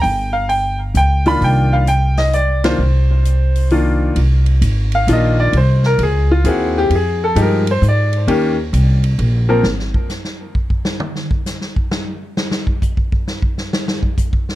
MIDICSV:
0, 0, Header, 1, 4, 480
1, 0, Start_track
1, 0, Key_signature, -3, "minor"
1, 0, Tempo, 458015
1, 39, Time_signature, 3, 2, 24, 8
1, 8199, Tempo, 453858
1, 15314, End_track
2, 0, Start_track
2, 0, Title_t, "Upright piano"
2, 0, Program_c, 0, 0
2, 17, Note_on_c, 0, 79, 89
2, 344, Note_on_c, 0, 77, 72
2, 355, Note_off_c, 0, 79, 0
2, 502, Note_off_c, 0, 77, 0
2, 514, Note_on_c, 0, 79, 75
2, 812, Note_off_c, 0, 79, 0
2, 1019, Note_on_c, 0, 79, 92
2, 1318, Note_on_c, 0, 51, 62
2, 1321, Note_on_c, 0, 58, 58
2, 1324, Note_on_c, 0, 62, 55
2, 1326, Note_on_c, 0, 65, 67
2, 1336, Note_off_c, 0, 79, 0
2, 1338, Note_on_c, 0, 83, 99
2, 1495, Note_off_c, 0, 83, 0
2, 1512, Note_on_c, 0, 79, 95
2, 1811, Note_on_c, 0, 77, 79
2, 1823, Note_off_c, 0, 79, 0
2, 1929, Note_off_c, 0, 51, 0
2, 1930, Note_off_c, 0, 58, 0
2, 1932, Note_off_c, 0, 62, 0
2, 1933, Note_off_c, 0, 65, 0
2, 1957, Note_off_c, 0, 77, 0
2, 1972, Note_on_c, 0, 79, 94
2, 2262, Note_off_c, 0, 79, 0
2, 2284, Note_on_c, 0, 75, 80
2, 2449, Note_off_c, 0, 75, 0
2, 2451, Note_on_c, 0, 74, 78
2, 2742, Note_off_c, 0, 74, 0
2, 2767, Note_on_c, 0, 51, 67
2, 2767, Note_on_c, 0, 58, 60
2, 2770, Note_on_c, 0, 62, 62
2, 2773, Note_on_c, 0, 72, 84
2, 2774, Note_on_c, 0, 65, 74
2, 2910, Note_off_c, 0, 51, 0
2, 2910, Note_off_c, 0, 58, 0
2, 2911, Note_off_c, 0, 62, 0
2, 2913, Note_off_c, 0, 65, 0
2, 3848, Note_off_c, 0, 72, 0
2, 3891, Note_on_c, 0, 51, 64
2, 3896, Note_on_c, 0, 58, 55
2, 3896, Note_on_c, 0, 65, 68
2, 3897, Note_on_c, 0, 62, 57
2, 4368, Note_off_c, 0, 51, 0
2, 4370, Note_off_c, 0, 58, 0
2, 4370, Note_off_c, 0, 65, 0
2, 4371, Note_off_c, 0, 62, 0
2, 5186, Note_on_c, 0, 77, 88
2, 5325, Note_on_c, 0, 51, 54
2, 5328, Note_on_c, 0, 58, 56
2, 5331, Note_on_c, 0, 62, 57
2, 5332, Note_off_c, 0, 77, 0
2, 5335, Note_on_c, 0, 65, 67
2, 5372, Note_on_c, 0, 75, 81
2, 5656, Note_off_c, 0, 75, 0
2, 5657, Note_on_c, 0, 74, 86
2, 5804, Note_off_c, 0, 51, 0
2, 5806, Note_off_c, 0, 58, 0
2, 5807, Note_off_c, 0, 62, 0
2, 5807, Note_off_c, 0, 74, 0
2, 5809, Note_off_c, 0, 65, 0
2, 5838, Note_on_c, 0, 72, 68
2, 6129, Note_off_c, 0, 72, 0
2, 6139, Note_on_c, 0, 70, 80
2, 6288, Note_off_c, 0, 70, 0
2, 6319, Note_on_c, 0, 68, 73
2, 6609, Note_off_c, 0, 68, 0
2, 6618, Note_on_c, 0, 65, 86
2, 6759, Note_on_c, 0, 64, 68
2, 6767, Note_off_c, 0, 65, 0
2, 6767, Note_on_c, 0, 58, 64
2, 6767, Note_on_c, 0, 60, 59
2, 6769, Note_on_c, 0, 68, 71
2, 6798, Note_on_c, 0, 66, 71
2, 7088, Note_off_c, 0, 66, 0
2, 7105, Note_on_c, 0, 67, 91
2, 7222, Note_off_c, 0, 67, 0
2, 7238, Note_on_c, 0, 67, 51
2, 7240, Note_off_c, 0, 64, 0
2, 7244, Note_off_c, 0, 58, 0
2, 7244, Note_off_c, 0, 60, 0
2, 7245, Note_off_c, 0, 68, 0
2, 7269, Note_off_c, 0, 67, 0
2, 7287, Note_on_c, 0, 68, 68
2, 7572, Note_off_c, 0, 68, 0
2, 7585, Note_on_c, 0, 69, 85
2, 7713, Note_on_c, 0, 53, 64
2, 7713, Note_on_c, 0, 56, 61
2, 7718, Note_on_c, 0, 67, 74
2, 7719, Note_on_c, 0, 63, 60
2, 7730, Note_off_c, 0, 69, 0
2, 7777, Note_on_c, 0, 70, 73
2, 8001, Note_off_c, 0, 53, 0
2, 8002, Note_off_c, 0, 56, 0
2, 8004, Note_off_c, 0, 67, 0
2, 8005, Note_off_c, 0, 63, 0
2, 8056, Note_off_c, 0, 70, 0
2, 8080, Note_on_c, 0, 72, 79
2, 8217, Note_off_c, 0, 72, 0
2, 8264, Note_on_c, 0, 74, 75
2, 8676, Note_on_c, 0, 51, 69
2, 8677, Note_on_c, 0, 58, 64
2, 8678, Note_on_c, 0, 61, 66
2, 8681, Note_on_c, 0, 67, 78
2, 8683, Note_off_c, 0, 74, 0
2, 8965, Note_off_c, 0, 51, 0
2, 8966, Note_off_c, 0, 58, 0
2, 8967, Note_off_c, 0, 61, 0
2, 8968, Note_off_c, 0, 67, 0
2, 9959, Note_on_c, 0, 53, 65
2, 9960, Note_on_c, 0, 58, 60
2, 9962, Note_on_c, 0, 60, 59
2, 9966, Note_on_c, 0, 70, 73
2, 10108, Note_off_c, 0, 53, 0
2, 10109, Note_off_c, 0, 58, 0
2, 10110, Note_off_c, 0, 60, 0
2, 10112, Note_off_c, 0, 70, 0
2, 15314, End_track
3, 0, Start_track
3, 0, Title_t, "Upright bass"
3, 0, Program_c, 1, 32
3, 35, Note_on_c, 1, 31, 71
3, 956, Note_off_c, 1, 31, 0
3, 990, Note_on_c, 1, 37, 74
3, 1442, Note_off_c, 1, 37, 0
3, 1477, Note_on_c, 1, 36, 73
3, 2878, Note_off_c, 1, 36, 0
3, 2920, Note_on_c, 1, 36, 71
3, 4321, Note_off_c, 1, 36, 0
3, 4356, Note_on_c, 1, 36, 66
3, 4826, Note_off_c, 1, 36, 0
3, 4836, Note_on_c, 1, 32, 81
3, 5305, Note_off_c, 1, 32, 0
3, 5314, Note_on_c, 1, 34, 84
3, 5784, Note_off_c, 1, 34, 0
3, 5792, Note_on_c, 1, 36, 75
3, 6263, Note_off_c, 1, 36, 0
3, 6270, Note_on_c, 1, 37, 88
3, 6741, Note_off_c, 1, 37, 0
3, 6752, Note_on_c, 1, 39, 95
3, 7222, Note_off_c, 1, 39, 0
3, 7228, Note_on_c, 1, 41, 73
3, 7699, Note_off_c, 1, 41, 0
3, 7708, Note_on_c, 1, 43, 87
3, 8178, Note_off_c, 1, 43, 0
3, 8193, Note_on_c, 1, 44, 90
3, 8664, Note_off_c, 1, 44, 0
3, 8674, Note_on_c, 1, 39, 71
3, 9145, Note_off_c, 1, 39, 0
3, 9157, Note_on_c, 1, 36, 92
3, 9627, Note_off_c, 1, 36, 0
3, 9639, Note_on_c, 1, 34, 90
3, 10103, Note_off_c, 1, 34, 0
3, 10110, Note_on_c, 1, 32, 76
3, 10426, Note_off_c, 1, 32, 0
3, 15314, End_track
4, 0, Start_track
4, 0, Title_t, "Drums"
4, 37, Note_on_c, 9, 36, 30
4, 38, Note_on_c, 9, 46, 42
4, 142, Note_off_c, 9, 36, 0
4, 143, Note_off_c, 9, 46, 0
4, 518, Note_on_c, 9, 46, 39
4, 622, Note_off_c, 9, 46, 0
4, 994, Note_on_c, 9, 42, 51
4, 1098, Note_off_c, 9, 42, 0
4, 1316, Note_on_c, 9, 46, 37
4, 1421, Note_off_c, 9, 46, 0
4, 1482, Note_on_c, 9, 36, 31
4, 1486, Note_on_c, 9, 46, 41
4, 1587, Note_off_c, 9, 36, 0
4, 1590, Note_off_c, 9, 46, 0
4, 1962, Note_on_c, 9, 42, 47
4, 2067, Note_off_c, 9, 42, 0
4, 2279, Note_on_c, 9, 38, 55
4, 2279, Note_on_c, 9, 46, 35
4, 2383, Note_off_c, 9, 38, 0
4, 2383, Note_off_c, 9, 46, 0
4, 2445, Note_on_c, 9, 42, 47
4, 2550, Note_off_c, 9, 42, 0
4, 2768, Note_on_c, 9, 38, 73
4, 2768, Note_on_c, 9, 51, 66
4, 2873, Note_off_c, 9, 38, 0
4, 2873, Note_off_c, 9, 51, 0
4, 3409, Note_on_c, 9, 42, 50
4, 3514, Note_off_c, 9, 42, 0
4, 3726, Note_on_c, 9, 46, 39
4, 3831, Note_off_c, 9, 46, 0
4, 3882, Note_on_c, 9, 46, 40
4, 3987, Note_off_c, 9, 46, 0
4, 4358, Note_on_c, 9, 51, 57
4, 4359, Note_on_c, 9, 36, 20
4, 4463, Note_off_c, 9, 51, 0
4, 4464, Note_off_c, 9, 36, 0
4, 4675, Note_on_c, 9, 51, 43
4, 4780, Note_off_c, 9, 51, 0
4, 4840, Note_on_c, 9, 36, 19
4, 4840, Note_on_c, 9, 44, 51
4, 4840, Note_on_c, 9, 51, 62
4, 4945, Note_off_c, 9, 36, 0
4, 4945, Note_off_c, 9, 44, 0
4, 4945, Note_off_c, 9, 51, 0
4, 5154, Note_on_c, 9, 51, 44
4, 5259, Note_off_c, 9, 51, 0
4, 5319, Note_on_c, 9, 36, 18
4, 5323, Note_on_c, 9, 44, 57
4, 5323, Note_on_c, 9, 51, 67
4, 5424, Note_off_c, 9, 36, 0
4, 5428, Note_off_c, 9, 44, 0
4, 5428, Note_off_c, 9, 51, 0
4, 5797, Note_on_c, 9, 36, 24
4, 5798, Note_on_c, 9, 51, 56
4, 5902, Note_off_c, 9, 36, 0
4, 5903, Note_off_c, 9, 51, 0
4, 6113, Note_on_c, 9, 38, 37
4, 6218, Note_off_c, 9, 38, 0
4, 6274, Note_on_c, 9, 36, 18
4, 6274, Note_on_c, 9, 51, 55
4, 6379, Note_off_c, 9, 36, 0
4, 6379, Note_off_c, 9, 51, 0
4, 6756, Note_on_c, 9, 36, 21
4, 6756, Note_on_c, 9, 44, 61
4, 6756, Note_on_c, 9, 51, 64
4, 6861, Note_off_c, 9, 36, 0
4, 6861, Note_off_c, 9, 44, 0
4, 6861, Note_off_c, 9, 51, 0
4, 7236, Note_on_c, 9, 36, 22
4, 7237, Note_on_c, 9, 51, 62
4, 7340, Note_off_c, 9, 36, 0
4, 7341, Note_off_c, 9, 51, 0
4, 7716, Note_on_c, 9, 36, 20
4, 7716, Note_on_c, 9, 44, 50
4, 7716, Note_on_c, 9, 51, 66
4, 7821, Note_off_c, 9, 36, 0
4, 7821, Note_off_c, 9, 44, 0
4, 7821, Note_off_c, 9, 51, 0
4, 8039, Note_on_c, 9, 51, 67
4, 8144, Note_off_c, 9, 51, 0
4, 8195, Note_on_c, 9, 36, 17
4, 8200, Note_on_c, 9, 44, 59
4, 8301, Note_off_c, 9, 36, 0
4, 8306, Note_off_c, 9, 44, 0
4, 8520, Note_on_c, 9, 51, 46
4, 8626, Note_off_c, 9, 51, 0
4, 8677, Note_on_c, 9, 36, 22
4, 8684, Note_on_c, 9, 51, 62
4, 8783, Note_off_c, 9, 36, 0
4, 8789, Note_off_c, 9, 51, 0
4, 9160, Note_on_c, 9, 36, 20
4, 9165, Note_on_c, 9, 44, 57
4, 9165, Note_on_c, 9, 51, 64
4, 9266, Note_off_c, 9, 36, 0
4, 9271, Note_off_c, 9, 44, 0
4, 9271, Note_off_c, 9, 51, 0
4, 9482, Note_on_c, 9, 51, 46
4, 9588, Note_off_c, 9, 51, 0
4, 9641, Note_on_c, 9, 36, 18
4, 9642, Note_on_c, 9, 51, 55
4, 9747, Note_off_c, 9, 36, 0
4, 9747, Note_off_c, 9, 51, 0
4, 10120, Note_on_c, 9, 38, 87
4, 10225, Note_off_c, 9, 38, 0
4, 10284, Note_on_c, 9, 38, 35
4, 10389, Note_off_c, 9, 38, 0
4, 10441, Note_on_c, 9, 36, 79
4, 10547, Note_off_c, 9, 36, 0
4, 10602, Note_on_c, 9, 38, 39
4, 10602, Note_on_c, 9, 44, 51
4, 10707, Note_off_c, 9, 38, 0
4, 10707, Note_off_c, 9, 44, 0
4, 10760, Note_on_c, 9, 38, 40
4, 10866, Note_off_c, 9, 38, 0
4, 11082, Note_on_c, 9, 36, 72
4, 11188, Note_off_c, 9, 36, 0
4, 11243, Note_on_c, 9, 36, 74
4, 11349, Note_off_c, 9, 36, 0
4, 11400, Note_on_c, 9, 38, 94
4, 11505, Note_off_c, 9, 38, 0
4, 11558, Note_on_c, 9, 47, 92
4, 11664, Note_off_c, 9, 47, 0
4, 11722, Note_on_c, 9, 38, 41
4, 11828, Note_off_c, 9, 38, 0
4, 11884, Note_on_c, 9, 36, 83
4, 11990, Note_off_c, 9, 36, 0
4, 12046, Note_on_c, 9, 38, 47
4, 12046, Note_on_c, 9, 44, 57
4, 12152, Note_off_c, 9, 38, 0
4, 12152, Note_off_c, 9, 44, 0
4, 12207, Note_on_c, 9, 38, 40
4, 12313, Note_off_c, 9, 38, 0
4, 12366, Note_on_c, 9, 36, 74
4, 12472, Note_off_c, 9, 36, 0
4, 12526, Note_on_c, 9, 38, 89
4, 12632, Note_off_c, 9, 38, 0
4, 13008, Note_on_c, 9, 38, 95
4, 13114, Note_off_c, 9, 38, 0
4, 13158, Note_on_c, 9, 38, 100
4, 13264, Note_off_c, 9, 38, 0
4, 13324, Note_on_c, 9, 36, 78
4, 13429, Note_off_c, 9, 36, 0
4, 13483, Note_on_c, 9, 44, 60
4, 13484, Note_on_c, 9, 36, 77
4, 13589, Note_off_c, 9, 44, 0
4, 13590, Note_off_c, 9, 36, 0
4, 13645, Note_on_c, 9, 36, 79
4, 13751, Note_off_c, 9, 36, 0
4, 13805, Note_on_c, 9, 36, 77
4, 13910, Note_off_c, 9, 36, 0
4, 13964, Note_on_c, 9, 38, 49
4, 14070, Note_off_c, 9, 38, 0
4, 14123, Note_on_c, 9, 36, 77
4, 14229, Note_off_c, 9, 36, 0
4, 14285, Note_on_c, 9, 38, 39
4, 14390, Note_off_c, 9, 38, 0
4, 14448, Note_on_c, 9, 38, 104
4, 14554, Note_off_c, 9, 38, 0
4, 14604, Note_on_c, 9, 38, 94
4, 14710, Note_off_c, 9, 38, 0
4, 14759, Note_on_c, 9, 36, 76
4, 14865, Note_off_c, 9, 36, 0
4, 14918, Note_on_c, 9, 44, 58
4, 14919, Note_on_c, 9, 36, 79
4, 15024, Note_off_c, 9, 36, 0
4, 15024, Note_off_c, 9, 44, 0
4, 15079, Note_on_c, 9, 36, 81
4, 15185, Note_off_c, 9, 36, 0
4, 15248, Note_on_c, 9, 38, 42
4, 15314, Note_off_c, 9, 38, 0
4, 15314, End_track
0, 0, End_of_file